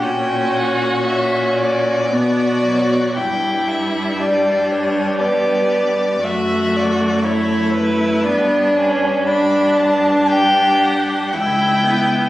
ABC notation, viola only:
X:1
M:3/4
L:1/8
Q:1/4=58
K:Glyd
V:1 name="Viola"
C2 C2 B, F, | G,6 | A,4 B, C | D4 E B, |]